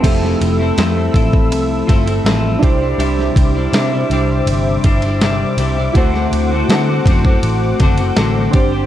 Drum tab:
CC |x---------------|----------------|----------------|
RD |x-x-x-x-x-xxx-x-|x-x-x-x-x-xxx-x-|x-x-x-x-x-xxx-x-|
SD |-o--o-------o---|-o--o-------o---|-o--o-------o---|
BD |o-----oo--o---o-|--o-------o-----|o-----oo--o---o-|